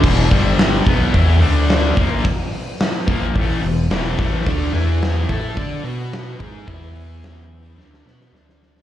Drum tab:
CC |x---------------|----------------|----------------|----------------|
HH |--o-o-o-o-o-o-o-|o-o-o-o-o-o-o-o-|o-o-o-o-o-o-o-o-|o-o-o-o---------|
SD |----o-------o---|----o-------o-o-|----o-------o---|----o---oooooooo|
BD |o-o---o-o-----o-|o-----o-o-----o-|o-----o-o-----o-|o---------------|